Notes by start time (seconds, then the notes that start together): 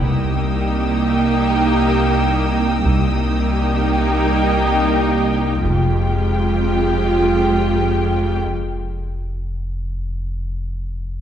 0.03 C2 A#3 D#4 G4 G5 D#6 E6
2.83 C2 A#3 D#4 G4 G5
5.64 F1 F2 G#3 F4 G4 G5
8.46 F1